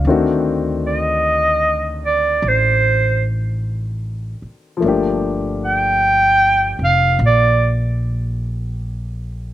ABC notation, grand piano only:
X:1
M:4/4
L:1/8
Q:"Swing" 1/4=50
K:Dphr
V:1 name="Grand piano"
f z6 z | z8 |]
V:2 name="Grand piano"
[E,A,CD^F]8 | [F,A,B,DG]8 |]